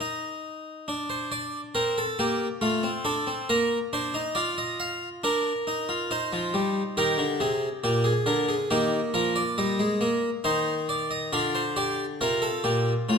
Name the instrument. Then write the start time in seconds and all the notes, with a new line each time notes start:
harpsichord
0.01 D#4
0.88 D4
1.10 C5
1.32 D5
1.75 C4 A#4
1.98 A4
2.19 A#3 G4
2.61 A3 F4
2.83 C4
3.05 D4 A4
3.27 C4
3.49 A#3 A#4
3.93 D4 C5
4.14 D#4
4.35 F4 D5
4.58 D#5
4.80 F5
5.24 D4 A#4
5.67 D#4
5.89 F4
6.11 D#4 C5
6.33 F3
6.54 G3
6.97 D#3 G4 A#4
7.18 D3
7.40 C3 G#4
7.84 A#2 G4
8.04 G#4
8.26 D3 A#4
8.49 G#4
8.71 D#3 A#3 G4
9.14 F3 A#4
9.36 D5
9.58 G3 D#5
9.79 G#3
10.01 A#3
10.44 D#3 D#4 C5
10.89 D5
11.11 D#5
11.33 D3 F4 D5
11.55 C5
11.76 G4 D5
12.21 C3 F4 A#4
12.42 A4
12.64 A#2 G4
13.09 A2 F4